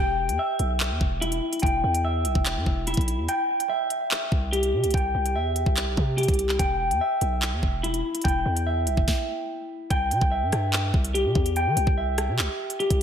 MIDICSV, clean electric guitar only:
0, 0, Header, 1, 2, 480
1, 0, Start_track
1, 0, Tempo, 413793
1, 1890, Time_signature, 4, 2, 24, 8
1, 15112, End_track
2, 0, Start_track
2, 0, Title_t, "Clean electric guitar"
2, 0, Program_c, 0, 27
2, 0, Note_on_c, 0, 79, 100
2, 453, Note_on_c, 0, 76, 83
2, 1408, Note_on_c, 0, 64, 103
2, 1870, Note_off_c, 0, 79, 0
2, 1884, Note_on_c, 0, 79, 101
2, 2359, Note_off_c, 0, 76, 0
2, 2373, Note_on_c, 0, 76, 83
2, 3321, Note_off_c, 0, 64, 0
2, 3335, Note_on_c, 0, 64, 88
2, 3799, Note_off_c, 0, 79, 0
2, 3811, Note_off_c, 0, 76, 0
2, 3812, Note_off_c, 0, 64, 0
2, 3813, Note_on_c, 0, 79, 106
2, 4286, Note_on_c, 0, 76, 83
2, 5249, Note_on_c, 0, 67, 91
2, 5723, Note_off_c, 0, 79, 0
2, 5737, Note_on_c, 0, 79, 106
2, 6199, Note_off_c, 0, 76, 0
2, 6212, Note_on_c, 0, 76, 88
2, 7152, Note_off_c, 0, 67, 0
2, 7166, Note_on_c, 0, 67, 94
2, 7634, Note_off_c, 0, 79, 0
2, 7648, Note_off_c, 0, 67, 0
2, 7648, Note_on_c, 0, 79, 102
2, 7651, Note_off_c, 0, 76, 0
2, 8133, Note_on_c, 0, 76, 83
2, 9087, Note_on_c, 0, 64, 101
2, 9549, Note_off_c, 0, 79, 0
2, 9563, Note_on_c, 0, 79, 101
2, 10038, Note_off_c, 0, 76, 0
2, 10052, Note_on_c, 0, 76, 82
2, 11479, Note_off_c, 0, 79, 0
2, 11488, Note_off_c, 0, 64, 0
2, 11490, Note_off_c, 0, 76, 0
2, 11493, Note_on_c, 0, 79, 110
2, 11965, Note_on_c, 0, 76, 84
2, 12927, Note_on_c, 0, 67, 96
2, 13403, Note_off_c, 0, 79, 0
2, 13417, Note_on_c, 0, 79, 108
2, 13878, Note_off_c, 0, 76, 0
2, 13891, Note_on_c, 0, 76, 86
2, 14832, Note_off_c, 0, 67, 0
2, 14846, Note_on_c, 0, 67, 93
2, 15112, Note_off_c, 0, 67, 0
2, 15112, Note_off_c, 0, 76, 0
2, 15112, Note_off_c, 0, 79, 0
2, 15112, End_track
0, 0, End_of_file